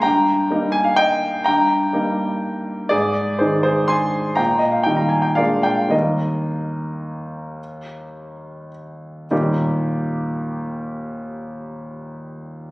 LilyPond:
<<
  \new Staff \with { instrumentName = "Grand piano" } { \time 3/4 \key ees \major \tempo 4 = 112 <g'' bes''>4. aes''16 f''16 <ees'' g''>4 | <g'' bes''>4. r4. | <aes' d''>4 <aes' c''>8 <aes' c''>8 <aes'' c'''>4 | <g'' bes''>8 ees''16 f''16 g''16 bes''16 aes''16 g''16 <d'' f''>8 g''16 f''16 |
<bes' ees''>2.~ | <bes' ees''>2 r4 | <ees, bes, g bes ees' g'>2.~ | <ees, bes, g bes ees' g'>2. | }
  \new Staff \with { instrumentName = "Grand piano" } { \clef bass \time 3/4 \key ees \major g,4 <g bes ees'>2 | g,4 <g bes ees'>2 | aes,4 <ees aes ees'>2 | bes,4 <ees g ees'>4 <bes, aes bes d'>4 |
<ees, g bes ees'>2.~ | <ees, g bes ees'>2. | r2. | r2. | }
>>